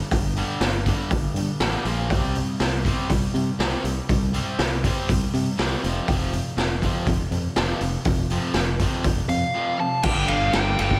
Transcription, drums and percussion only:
0.11 kick, open hi-hat
0.36 open hi-hat
0.61 snare, open hi-hat
0.86 kick, open hi-hat
1.11 kick, open hi-hat
1.36 open hi-hat
1.60 snare, open hi-hat
1.85 open hi-hat
2.10 kick, open hi-hat
2.35 open hi-hat
2.60 snare, open hi-hat
2.85 kick, open hi-hat
3.10 kick, open hi-hat
3.35 open hi-hat
3.60 snare, open hi-hat
3.85 open hi-hat
4.09 kick, open hi-hat
4.34 open hi-hat
4.59 snare, open hi-hat
4.84 kick, open hi-hat
5.09 kick, open hi-hat
5.34 open hi-hat
5.59 snare, open hi-hat
5.84 open hi-hat
6.08 kick, open hi-hat
6.33 open hi-hat
6.58 snare, open hi-hat
6.82 kick, open hi-hat
7.07 kick, open hi-hat
7.32 open hi-hat
7.56 snare, open hi-hat
7.81 open hi-hat
8.05 kick, open hi-hat
8.30 open hi-hat
8.54 snare, open hi-hat
8.79 kick, open hi-hat
9.04 kick, open hi-hat
9.29 open hi-hat
10.03 kick, crash
10.28 ride
10.53 snare, ride
10.79 ride
10.91 kick

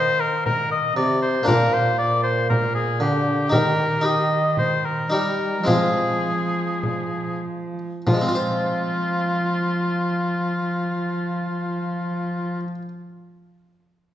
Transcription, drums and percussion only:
0.46 frame drum
1.48 frame drum
2.50 frame drum
3.52 frame drum
4.57 frame drum
5.67 frame drum
6.83 frame drum
8.07 frame drum

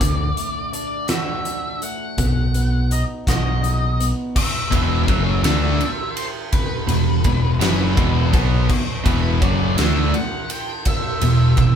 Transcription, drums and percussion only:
0.01 kick, closed hi-hat
0.37 closed hi-hat
0.73 closed hi-hat
1.08 snare, closed hi-hat
1.45 closed hi-hat
1.82 closed hi-hat
2.18 kick, closed hi-hat
2.54 closed hi-hat
2.91 closed hi-hat
3.27 kick, snare, closed hi-hat
3.64 closed hi-hat
4.00 closed hi-hat
4.36 kick, crash
4.72 kick, ride
5.08 kick, ride
5.44 snare, ride
5.81 ride
6.17 ride
6.52 kick, ride
6.89 ride
7.24 kick, ride
7.61 snare, ride
7.97 kick, ride
8.33 kick, ride
8.69 kick, crash
9.06 kick, ride
9.42 kick, ride
9.78 snare, ride
10.14 ride
10.50 ride
10.85 kick, ride
11.21 ride
11.57 kick, ride

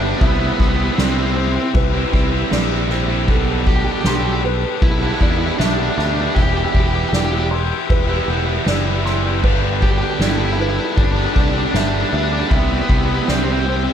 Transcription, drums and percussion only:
0.21 kick, ride
0.60 kick, ride
0.98 snare, ride
1.36 ride
1.74 kick, ride
2.13 kick, ride
2.51 snare, ride
2.90 snare, ride
3.27 kick, ride
3.66 kick, ride
4.04 snare, ride
4.42 ride
4.81 kick, ride
5.21 kick, ride
5.60 snare, ride
5.99 snare, ride
6.36 kick, ride
6.75 kick, ride
7.13 snare, ride
7.52 ride
7.90 kick, ride
8.29 ride
8.66 snare, ride
9.06 snare, ride
9.44 kick, crash
9.82 kick, ride
10.20 snare, ride
10.59 ride
10.98 kick, ride
11.36 kick, ride
11.74 snare, ride
12.12 ride
12.51 kick, ride
12.89 kick, ride
13.28 snare, ride
13.67 ride

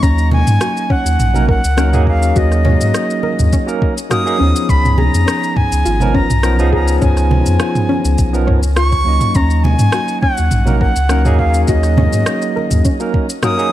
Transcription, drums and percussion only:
0.03 kick, shaker
0.18 shaker
0.31 high conga, low conga
0.47 mid tom, shaker
0.61 cross-stick, shaker
0.77 shaker
0.90 kick
1.06 shaker
1.20 mid tom, shaker
1.35 low conga, shaker
1.49 kick
1.64 shaker
1.78 cross-stick, shaker
1.93 mid tom, shaker
2.07 kick
2.23 shaker
2.36 kick, shaker
2.52 cross-stick, shaker
2.65 mid tom, high conga, low conga
2.81 shaker
2.94 cross-stick, shaker
3.10 shaker
3.23 high conga
3.39 mid tom, shaker
3.53 kick, shaker
3.68 shaker
3.82 kick
3.98 shaker
4.11 cross-stick, mid tom, shaker
4.27 shaker
4.56 shaker
4.69 kick, shaker
4.85 mid tom, shaker
4.98 high conga, low conga
5.14 shaker
5.28 cross-stick, shaker
5.44 shaker
5.57 kick, mid tom
5.72 shaker
5.86 shaker
6.00 low conga, shaker
6.15 kick
6.30 mid tom, shaker
6.43 cross-stick, shaker
6.59 shaker
6.73 kick
6.88 shaker
7.02 kick, mid tom, shaker
7.17 cross-stick, shaker
7.31 high conga, low conga
7.46 shaker
7.60 cross-stick, shaker
7.75 mid tom, shaker
7.89 high conga
8.05 shaker
8.18 kick, shaker
8.34 shaker
8.47 kick, mid tom
8.63 shaker
8.76 cross-stick, shaker
8.92 kick, shaker
9.21 mid tom, shaker
9.35 kick, shaker
9.50 shaker
9.64 high conga, low conga
9.79 mid tom, shaker
9.92 cross-stick, shaker
10.08 shaker
10.23 kick
10.37 shaker
10.51 mid tom, shaker
10.67 low conga, shaker
10.81 kick
10.96 shaker
11.09 cross-stick, shaker
11.25 mid tom, shaker
11.39 kick
11.54 shaker
11.68 kick, shaker
11.83 cross-stick, shaker
11.97 mid tom, high conga, low conga
12.13 shaker
12.26 cross-stick, shaker
12.42 shaker
12.57 high conga
12.71 mid tom, shaker
12.85 kick, shaker
13.00 shaker
13.14 kick
13.30 shaker
13.43 cross-stick, mid tom, shaker
13.59 shaker

